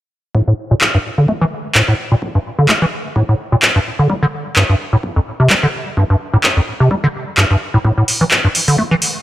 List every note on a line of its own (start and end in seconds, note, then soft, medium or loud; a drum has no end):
0.35 0.42 A2 medium
0.35 kick loud
0.48 0.53 A2 medium
0.71 0.74 A#2 medium
0.81 kick loud
0.81 clap loud
0.95 0.98 G2 medium
1.18 1.27 D3 medium
1.28 1.33 A3 medium
1.28 kick loud
1.41 1.45 E3 loud
1.75 1.82 A2 medium
1.75 kick loud
1.75 clap loud
1.88 1.94 A2 medium
2.12 2.15 A#2 medium
2.22 kick loud
2.35 2.39 G2 medium
2.59 2.67 D3 medium
2.69 2.73 A3 medium
2.69 kick loud
2.69 clap loud
2.82 2.85 E3 loud
3.16 3.23 A2 medium
3.16 kick loud
3.29 3.35 A2 medium
3.52 3.56 A#2 medium
3.62 kick loud
3.62 clap loud
3.76 3.79 G2 medium
3.99 4.08 D3 medium
4.10 4.14 G3 medium
4.10 kick loud
4.23 4.26 D3 loud
4.56 4.64 G2 medium
4.56 kick loud
4.56 clap loud
4.69 4.75 G2 medium
4.93 4.96 A2 medium
5.03 kick loud
5.16 5.20 F2 medium
5.40 5.48 C3 medium
5.50 5.55 G3 medium
5.50 kick loud
5.50 clap loud
5.63 5.67 D3 loud
5.97 6.04 G2 medium
5.97 kick loud
6.10 6.16 G2 medium
6.33 6.37 A2 medium
6.44 kick loud
6.44 clap loud
6.57 6.60 F2 medium
6.80 6.89 C3 medium
6.91 6.95 G3 medium
6.91 kick loud
7.04 7.07 D3 loud
7.37 7.45 G2 medium
7.37 kick loud
7.37 clap loud
7.51 7.56 G2 medium
7.74 7.78 A2 medium
7.85 7.92 A2 medium
7.85 kick loud
7.98 8.03 A2 medium
8.08 open hi-hat loud
8.21 8.24 E3 medium
8.31 kick loud
8.31 clap loud
8.44 8.48 G2 medium
8.55 open hi-hat loud
8.68 8.77 D3 medium
8.68 open hi-hat medium
8.78 8.83 A3 medium
8.78 kick loud
8.91 8.95 E3 loud
9.02 open hi-hat loud